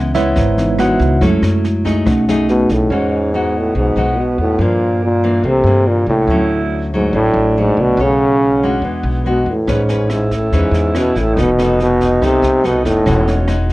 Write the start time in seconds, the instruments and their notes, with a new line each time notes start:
Already playing: upright bass C#2, nylon-string guitar C#3 G#3 B3 E4, tine electric piano E3 B3
0.14 nylon-string guitar G#3 B3 E4, tine electric piano E4 B4 C#5 E5, kick, snare
0.36 upright bass G#1, nylon-string guitar G#2, kick, snare
0.57 tine electric piano E3 B3 D#4, snare
0.79 nylon-string guitar G#3 B3 E4, tine electric piano F#4 F#5, cross-stick, snare
1.00 upright bass C#2, kick, snare
1.21 upright bass F#2, nylon-string guitar F#3 C#4 E4 A4, tine electric piano G#3 A3 E4, kick, snare
1.42 upright bass F#2, cross-stick, snare
1.65 snare
1.85 nylon-string guitar A3 D#4 G#4, kick, snare
2.06 upright bass B1, nylon-string guitar B2, tine electric piano A3 C#4 D#4, kick, cross-stick, snare
2.28 nylon-string guitar A3 D#4 G#4, snare
2.49 trombone B2, snare
2.69 upright bass B1, trombone A2, kick, snare
2.90 upright bass E2, trombone G#2, nylon-string guitar E3 G#3 D#4 F#4, alto saxophone C#4
3.12 tine electric piano D#5
3.32 nylon-string guitar G#3 D#4 F#4, alto saxophone B3
3.58 trombone A2
3.75 upright bass B1, trombone G#2, nylon-string guitar B2
3.96 upright bass B1, nylon-string guitar G#3 D#4 F#4
4.19 trombone B2
4.38 upright bass E2, trombone A2
4.59 upright bass G2, nylon-string guitar G2 F3 A#3 D4, trombone A#2, alto saxophone A#3
5.04 trombone A#2
5.24 nylon-string guitar E3 A#3 D4
5.44 upright bass C2, nylon-string guitar C3, alto saxophone A3
5.48 trombone C3
5.64 upright bass G2, nylon-string guitar E3 A#3 D4
5.85 trombone A#2, alto saxophone G3
6.06 upright bass C2, trombone A2
6.21 alto saxophone F#4
6.27 upright bass D2, nylon-string guitar D3 F#3 A3 C#4, alto saxophone E4, tine electric piano C#5
6.45 tine electric piano E5
6.94 trombone G#2, nylon-string guitar F#3 A3
7.12 upright bass A1, nylon-string guitar A2, trombone A2, alto saxophone D4
7.34 upright bass A1
7.58 trombone G#2, nylon-string guitar F#3 A3
7.77 upright bass C2, trombone B2
7.97 upright bass B1, nylon-string guitar B3 A4 C#5, alto saxophone C#4, tine electric piano F#5
8.03 trombone C#3
8.63 nylon-string guitar G#3 D4 F#4
8.82 upright bass E2, nylon-string guitar E3, alto saxophone B3
9.03 upright bass B1
9.24 trombone B2, nylon-string guitar G#3 D4 F#4, tine electric piano B4
9.46 upright bass E2
9.52 trombone A2
9.67 upright bass A1, trombone G#2, alto saxophone C#4, nylon-string guitar C#4 G#4 B4, kick, cross-stick, snare
9.89 nylon-string guitar C#4 G#4 B4, snare
10.09 alto saxophone E4, cross-stick, snare
10.13 trombone G#2
10.31 trombone A2, kick, snare
10.53 upright bass E2, trombone G#2, nylon-string guitar E3 C#4 G#4 B4, kick, snare
10.72 upright bass E2, snare
10.95 trombone B2, nylon-string guitar C#4 G#4 B4, tine electric piano C#5, cross-stick, snare
11.16 upright bass A1, trombone A2, kick, snare
11.34 upright bass F1, nylon-string guitar F3 B3, alto saxophone D#4, kick, snare
11.38 trombone B2, nylon-string guitar D#4 A4
11.59 nylon-string guitar B3 D#4 A4, cross-stick, snare
11.80 trombone B2, snare
12.01 kick, snare
12.22 upright bass C2, nylon-string guitar C3 B3 D#4 A4, trombone C3, kick, cross-stick, snare
12.42 upright bass C2, snare
12.64 trombone B2, nylon-string guitar B3 D#4 A4, snare
12.85 upright bass F1, trombone A2, kick, snare
13.05 upright bass E1, nylon-string guitar E3 G#3 D#4 F#4, alto saxophone C#4, kick, cross-stick, snare
13.27 tine electric piano F#5, snare
13.47 nylon-string guitar G#3 D#4 F#4, cross-stick, snare
13.69 kick, snare